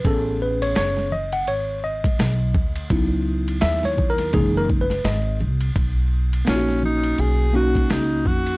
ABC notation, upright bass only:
X:1
M:4/4
L:1/8
Q:"Swing 16ths" 1/4=84
K:B
V:1 name="Upright bass" clef=bass
=A,,,2 F,,,2 G,,,2 B,,, =D,, | C,,2 D,,2 F,,,2 G,,, =C,, | B,,,2 A,,,2 B,,,2 C,, ^E,, |]